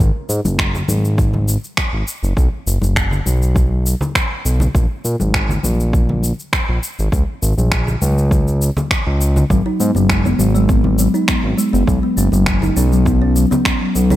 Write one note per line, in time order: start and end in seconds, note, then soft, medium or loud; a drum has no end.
0.00 0.11 G#1 medium
0.00 shaker soft
0.29 0.41 G#2 loud
0.29 muted conga soft
0.29 shaker medium
0.44 0.83 F#1 medium
0.44 high conga medium
0.44 shaker soft
0.59 finger snap loud
0.59 kick loud
0.59 shaker soft
0.75 low conga medium
0.75 shaker soft
0.88 1.57 G#1 loud
0.88 high conga medium
0.88 shaker medium
1.05 shaker soft
1.18 kick loud
1.18 shaker soft
1.33 high conga medium
1.33 low conga medium
1.48 muted conga soft
1.48 shaker medium
1.64 shaker soft
1.77 finger snap loud
1.77 kick loud
1.77 shaker soft
1.93 2.04 G#1 medium
2.08 shaker medium
2.23 2.33 F#1 medium
2.23 shaker soft
2.37 2.49 B1 medium
2.37 kick loud
2.37 shaker soft
2.66 2.78 F#1 medium
2.66 shaker medium
2.82 3.20 F#1 medium
2.82 high conga medium
2.82 shaker soft
2.96 finger snap medium
2.96 kick loud
2.96 shaker soft
3.11 low conga medium
3.11 shaker soft
3.26 3.95 B1 loud
3.26 high conga medium
3.26 shaker medium
3.42 shaker soft
3.55 kick medium
3.55 high conga medium
3.55 shaker soft
3.86 shaker medium
4.01 high conga soft
4.01 low conga medium
4.01 shaker soft
4.15 finger snap loud
4.15 kick loud
4.15 shaker soft
4.45 4.68 B1 medium
4.45 shaker medium
4.60 muted conga medium
4.60 low conga medium
4.60 shaker soft
4.75 4.86 A#1 medium
4.75 kick loud
4.75 shaker soft
5.04 5.16 A#2 medium
5.04 muted conga soft
5.04 shaker medium
5.20 5.58 G#1 medium
5.20 high conga medium
5.20 shaker soft
5.34 finger snap loud
5.34 kick loud
5.34 shaker soft
5.49 low conga medium
5.49 shaker soft
5.63 6.33 A#1 loud
5.63 high conga medium
5.63 shaker medium
5.80 shaker soft
5.93 kick loud
5.93 shaker soft
6.09 high conga medium
6.09 low conga medium
6.23 muted conga soft
6.23 shaker medium
6.39 shaker soft
6.53 finger snap loud
6.53 kick loud
6.53 shaker soft
6.69 6.79 A#1 medium
6.83 shaker medium
6.99 7.09 G#1 medium
6.99 shaker soft
7.12 7.24 C#2 medium
7.12 kick loud
7.12 shaker soft
7.42 7.54 G#1 loud
7.42 shaker medium
7.57 7.96 A#1 medium
7.57 high conga medium
7.57 shaker soft
7.72 finger snap loud
7.72 kick loud
7.72 shaker soft
7.87 low conga medium
7.87 shaker soft
8.02 8.70 C#2 loud
8.02 high conga medium
8.02 shaker medium
8.18 shaker soft
8.31 kick loud
8.31 high conga medium
8.31 shaker soft
8.48 shaker soft
8.62 shaker medium
8.77 high conga soft
8.77 low conga loud
8.77 shaker soft
8.91 finger snap medium
8.91 kick loud
8.91 shaker soft
9.06 9.44 C#2 medium
9.21 shaker medium
9.36 muted conga soft
9.36 low conga medium
9.36 shaker soft
9.50 9.62 G#1 medium
9.50 9.65 F#3 medium
9.50 kick loud
9.50 shaker soft
9.66 9.79 D#4 medium
9.80 9.91 G#2 loud
9.80 9.89 B3 medium
9.80 muted conga soft
9.80 shaker medium
9.95 10.33 F#1 medium
9.95 10.09 F#3 medium
9.95 high conga medium
9.95 shaker soft
10.10 10.24 G#3 medium
10.10 finger snap medium
10.10 kick loud
10.10 shaker soft
10.25 10.38 B3 loud
10.25 low conga medium
10.25 shaker soft
10.39 11.08 G#1 loud
10.39 10.48 F#3 medium
10.39 high conga medium
10.39 shaker medium
10.55 10.68 G#3 loud
10.55 shaker soft
10.69 10.84 B3 medium
10.69 kick loud
10.69 shaker soft
10.84 10.97 F#3 medium
10.84 high conga medium
10.84 low conga medium
10.98 11.13 F#3 medium
10.98 muted conga soft
10.98 shaker medium
11.14 11.27 D#4 medium
11.14 shaker soft
11.28 finger snap medium
11.28 kick loud
11.28 shaker soft
11.43 11.54 G#1 medium
11.43 11.57 F#3 medium
11.57 11.72 G#3 medium
11.57 shaker medium
11.73 11.84 F#1 medium
11.73 11.86 B3 loud
11.73 shaker soft
11.87 11.99 B1 medium
11.87 11.96 F#3 medium
11.87 kick medium
11.87 shaker soft
12.03 12.16 B3 medium
12.17 12.29 F#1 loud
12.17 12.32 C#4 medium
12.17 shaker medium
12.32 12.71 F#1 medium
12.32 12.45 F#3 medium
12.32 high conga medium
12.32 shaker soft
12.46 12.62 F#3 medium
12.46 finger snap medium
12.46 kick loud
12.46 shaker soft
12.62 12.76 D#4 loud
12.62 low conga medium
12.62 shaker soft
12.76 13.45 B1 loud
12.76 12.85 C#4 medium
12.76 high conga medium
12.76 shaker medium
12.92 13.05 F#3 medium
12.92 shaker soft
13.06 13.21 B3 medium
13.06 kick medium
13.06 high conga medium
13.06 shaker soft
13.22 13.34 C#4 loud
13.36 13.45 F#3 medium
13.36 shaker medium
13.51 13.65 B3 medium
13.51 high conga soft
13.51 low conga medium
13.51 shaker soft
13.65 13.80 C#4 medium
13.65 finger snap medium
13.65 kick medium
13.65 shaker soft
13.81 13.94 F#3 medium
13.95 14.16 B1 medium
13.95 14.10 F#3 medium
13.95 shaker medium
14.10 14.16 D#4 loud
14.10 muted conga medium
14.10 low conga medium
14.10 shaker soft